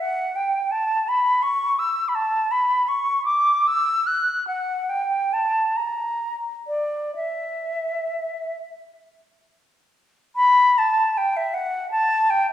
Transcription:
0.00 F#5
0.35 G5
0.71 A5
1.08 B5
1.42 C#6
1.79 E6
2.08 B5
2.15 A5
2.51 B5
2.88 C#6
3.25 D6
3.67 E6
4.07 F#6
4.47 F#5
4.89 G5
5.33 A5
5.76 A#5
6.67 D5
7.16 E5
10.36 B5
10.78 A5
11.17 G5
11.36 E5
11.54 F#5
11.91 A5
12.30 G5

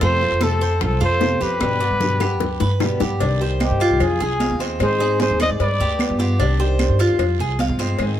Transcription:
0.01 F2 C3 F3 A3 C4 F4 A4 C5, high bongo, long guiro
0.21 A3 C4 F4, high bongo, high conga
0.32 F2
0.41 C3 F3 A3 C4 F4 A4, high bongo, high conga, short guiro, claves
0.61 A3 C4 F4 C5, high bongo, high conga, short guiro
0.81 C2 F4 A4, muted steel-string acoustic guitar stroke, high bongo, high conga, low conga, long guiro, claves
1.01 F2 F4 A4 C5, high conga
1.20 C3 F3 A3 C4 F4, high bongo, low bongo, high conga, short guiro
1.40 F2 A3 C4 F4 G4 B4, high bongo, short guiro
1.60 G2 B2 D3 G3 B3 G4, high bongo, high conga, long guiro, claves
1.80 G3 B3 G4 D5, high bongo
1.91 G2
2.00 B2 D3 G3 B3 G4, high bongo, low conga, short guiro
2.20 G3 B3 G4, high bongo, low conga, short guiro, claves
2.40 D2, muted steel-string acoustic guitar stroke, high bongo, low conga, long guiro
2.60 G2 B4, low bongo, low conga
2.80 B2 D3 G3 B3 G4, low bongo, low conga, short guiro, claves
3.00 G2 G3 B3 G4, low bongo, low conga, short guiro
3.20 C2 C3 D#3 G3 D4 G4, cowbell, high conga, long guiro
3.40 D#3 G3 G4 C5, high conga
3.60 D#4 G4, cowbell, high conga, short guiro, claves
3.71 G2
3.80 F4, cowbell, high conga, short guiro
3.91 C2
4.00 F2 F4 G#4, muted steel-string acoustic guitar stroke, cowbell, high conga, low conga, long guiro, claves
4.20 C2 F4 G#4, high conga, low conga
4.39 F3 G#3 C4 F4 F5, cowbell, high conga, short guiro
4.50 D#2
4.59 F3 G#3 C4 F4 C5, cowbell, short guiro
4.79 G#2 D#3 G#3 C4 D#4 G#4 C5, cowbell, high conga, long guiro, claves
4.99 G#3 C4 D#4 G#4, high conga
5.20 G#4 C5, cowbell, high conga, short guiro
5.30 D#2
5.40 C5 D5 D#5, cowbell, high conga, short guiro, claves
5.50 G#2
5.60 G2 B4 D5, muted steel-string acoustic guitar stroke, cowbell, high conga, long guiro
5.80 D2 G4, high conga
5.99 G3 B3 F4, cowbell, high conga, short guiro, claves
6.10 G2
6.19 B3 F4 G4, high conga, short guiro
6.39 C2 C3 D#3 G3 D4 G4, cowbell, high conga, long guiro
6.59 D#3 G3 D4 G4 C5, high conga
6.79 cowbell, high conga, short guiro, claves
6.89 G2
6.99 F4, cowbell, high conga, short guiro
7.09 D#2
7.19 F2, muted steel-string acoustic guitar stroke, cowbell, high conga, low conga, long guiro, claves
7.39 C2 G#4, high conga
7.59 F3 G#3 C4 F4 F5, cowbell, high conga, short guiro
7.69 G2
7.79 F3 G#3 C4 F4 C5, cowbell, short guiro
7.99 G#2 D#3 G#3 C4 D#4 G#4, cowbell, high conga, long guiro, claves

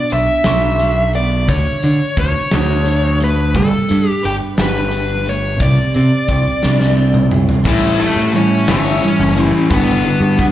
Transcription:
Already playing: B2 D4 D5
0.10 B1 E5, closed hi-hat
0.44 B1 F#4, snare, closed hi-hat
0.79 D4, closed hi-hat
1.13 B3 D5, closed hi-hat
1.48 D2 D3 C#5, kick, closed hi-hat
1.83 D3 D4, closed hi-hat
2.17 D2 C#5, kick, closed hi-hat
2.51 D2 F#4, snare, closed hi-hat
2.86 D4, closed hi-hat
3.20 A3 B4, closed hi-hat
3.54 G1 G3 A4, kick, closed hi-hat
3.89 G2 D4, closed hi-hat
4.09 G4
4.23 G1 G4 B4, closed hi-hat
4.57 G1 G4, snare, closed hi-hat
4.62 B4
4.91 D4, closed hi-hat
5.26 A3 C#5, closed hi-hat
5.60 C2 C3 D5, kick, closed hi-hat
5.94 C3 C4, closed hi-hat
6.28 C2 G4, kick, closed hi-hat
6.62 C2 D4, snare
6.80 snare
6.96 C4
7.14 mid tom
7.31 G3, mid tom
7.49 floor tom
7.64 A1 A2 E3 G3 A3 C#4 E4, kick, crash
7.98 A2 E3 G3 A3 C#4 E4 A4, closed hi-hat
8.16 A2
8.33 E3 G3 C#4 E4 C#5, closed hi-hat
8.38 C#4
8.67 G1 A2 E3 G3 A3 C#4 E4 C#5, snare, closed hi-hat
9.02 A2 E3 G3 C#4 E4, closed hi-hat
9.19 F#1
9.36 A2 E3 G3 C#4 E4, closed hi-hat
9.44 B4
9.70 G1 G2 D3 G3 B3 D4 B4, kick, closed hi-hat
9.74 B3
10.03 G2 D3 F#3 B3 D4, closed hi-hat
10.21 G2
10.38 D3 B3 D4, kick, closed hi-hat

